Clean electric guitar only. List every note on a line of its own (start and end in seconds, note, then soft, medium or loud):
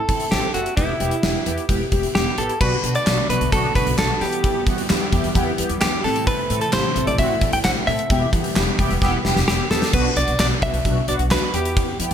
0.00 0.33 A4 loud
0.31 0.54 G4 medium
0.54 0.76 F#4 medium
0.77 1.65 E4 medium
2.15 2.39 G4 medium
2.38 2.61 A4 medium
2.61 2.95 B4 loud
2.96 3.29 D5 loud
3.30 3.51 B4 medium
3.53 3.75 A4 loud
3.76 3.98 B4 medium
3.99 4.22 A4 medium
4.21 4.64 G4 medium
5.81 6.03 G4 medium
6.04 6.26 A4 medium
6.27 6.61 B4 loud
6.62 6.73 A4 medium
6.73 7.07 C5 medium
7.07 7.19 D5 medium
7.19 7.51 E5 loud
7.53 7.58 G5 loud
7.64 7.71 F#5 loud
7.87 8.30 E5 loud
9.48 9.70 G4 medium
9.71 9.94 A4 medium
9.94 10.17 B4 loud
10.17 10.38 D5 loud
10.40 10.46 D5 loud
10.63 11.08 E5 loud
11.09 11.15 D5 loud
11.31 11.55 B4 loud
11.54 11.97 G4 medium